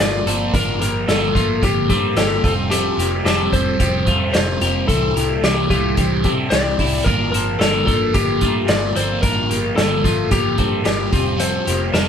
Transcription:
Already playing: A3 F4
0.00 G1 G2 D3 F3 A#3 F4 D5, snare
0.26 G1 A#3 C4 F4 A4, closed hi-hat
0.30 F3
0.54 G1 G2 D3 F3 A#3 D4 F4 A#4, kick, closed hi-hat
0.80 G1 F3 A#3 F4 G4 A#4, closed hi-hat
1.08 G1 G2 D3 F3 A#3 F4 A4, snare, closed hi-hat
1.35 G1 F3 A3 A#3 F4, kick, closed hi-hat
1.62 G1 D3 F3 A#3 F4 G4, kick, closed hi-hat
1.90 G2 F3 A#3 C4 F4 G4 A4, kick, closed hi-hat
2.16 G1 G2 D3 F3 A#3 F4 G4 A4, snare, closed hi-hat
2.44 F1 G3 C4 F4 A4, kick, closed hi-hat
2.70 F3 G3 C4 F4 G4 A4, closed hi-hat
2.97 F1 G3 A#3 C4 F4 G4, closed hi-hat
3.25 F1 F3 G3 C4 F4 G4 A4, snare, closed hi-hat
3.52 F1 G3 C4 F4 C5, kick, closed hi-hat
3.78 F1 F3 G3 C4 F4 G4, kick, closed hi-hat
4.05 F2 G3 A3 C4 F4, kick, closed hi-hat
4.32 F1 F3 G3 C4 F4 C5, snare, closed hi-hat
4.60 F1 G3 A#3 C4 F4 G4, closed hi-hat
4.88 C2 C3 E3 G3 C4 D4 E4 A4, kick, closed hi-hat
5.15 C2 A#3 D4 E4 G4, closed hi-hat
5.19 G3
5.42 C2 C3 E3 G3 D4 E4 G4, snare, closed hi-hat
5.69 C2 G3 A3 D4 E4 F4 G4, kick, closed hi-hat
5.96 C2 E3 G3 C4 D4 E4 G4, kick, closed hi-hat
6.23 C3 G3 C4 D4 E4 G4 A4, kick, closed hi-hat
6.50 C2 C3 E3 G3 C4 D4 E4 G4 D5, snare, closed hi-hat
6.77 C2 G3 D4 E4, kick, open hi-hat
7.04 G1 G2 D3 F3 A#3 D4 F4 A#4, kick, closed hi-hat
7.32 G1 F3 A#3 C4 F4 A4 A#4, closed hi-hat
7.58 G1 G2 D3 F3 A#3 F4 A4 A#4, snare, closed hi-hat
7.62 D4
7.85 G1 F3 A#3 F4 A4, kick, closed hi-hat
8.13 G1 D3 F3 A#3 F4 G4, kick, closed hi-hat
8.40 G2 F3 A3 A#3 F4, kick, closed hi-hat
8.66 G1 G2 D3 F3 A#3 F4 D5, snare, closed hi-hat
8.94 G1 F3 A#3 C4 F4 A4 C5, closed hi-hat
9.22 G1 G2 D3 F3 A#3 D4 F4 A#4, kick, closed hi-hat
9.49 G1 F3 A#3 F4 G4, closed hi-hat
9.76 G1 G2 D3 F3 A#3 F4 A4, snare, closed hi-hat
10.03 G1 F3 A3 A#3 F4, kick, closed hi-hat
10.30 G1 D3 F3 A#3 F4 G4, kick, closed hi-hat
10.57 G2 F3 A#3 C4 F4 A4, kick, closed hi-hat
10.84 G1 G2 D3 F3 A#3 F4 G4, snare, closed hi-hat
11.11 F1 G3 C4 F4, kick, closed hi-hat
11.37 F3 G3 C4 F4 A4 C5, closed hi-hat
11.65 F1 G3 A#3 C4 F4 G4, closed hi-hat
11.92 F1 F3 G3 C4 F4 A#4 A5, snare, closed hi-hat

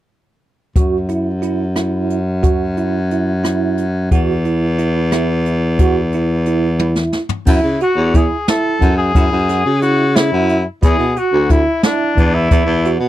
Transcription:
0.76 F#2 F#4, kick, closed hi-hat
1.09 E4, closed hi-hat
1.42 E4, closed hi-hat
1.76 E4, cross-stick, closed hi-hat
2.10 closed hi-hat
2.43 F#4, kick, closed hi-hat
2.77 E4, closed hi-hat
3.11 E4, closed hi-hat
3.44 E4, cross-stick, closed hi-hat
3.78 closed hi-hat
4.11 E2 F#4, kick, closed hi-hat
4.45 E4, closed hi-hat
4.78 E4, closed hi-hat
5.12 E4, cross-stick, closed hi-hat
5.45 closed hi-hat
5.79 F#4, kick, closed hi-hat
6.12 E4, closed hi-hat
6.46 E4, closed hi-hat
6.79 E4, high tom
6.95 snare
7.13 snare
7.29 floor tom
7.46 F#2 E4, kick, crash
7.63 C#3
7.80 F#4, closed hi-hat
7.96 E2
8.14 E4 G#4, kick, closed hi-hat
8.48 E4 A4, snare, closed hi-hat
8.81 F#2, kick, closed hi-hat
8.97 G#4
9.14 F#2 E4, kick, closed hi-hat
9.32 F#2
9.49 F#4, snare, closed hi-hat
9.66 C#3
9.82 E4 F#4, closed hi-hat
10.15 E4, snare, closed hi-hat
10.32 F#2
10.49 closed hi-hat
10.83 E2 E4 G#4, kick, closed hi-hat
10.98 B2
11.17 F#4, closed hi-hat
11.32 D2
11.50 E4, kick, closed hi-hat
11.83 D4 E4, snare, closed hi-hat
12.17 E2, kick, closed hi-hat
12.35 E4
12.51 E2 E4, kick, closed hi-hat
12.66 E2
12.85 F#4, closed hi-hat
13.00 B2

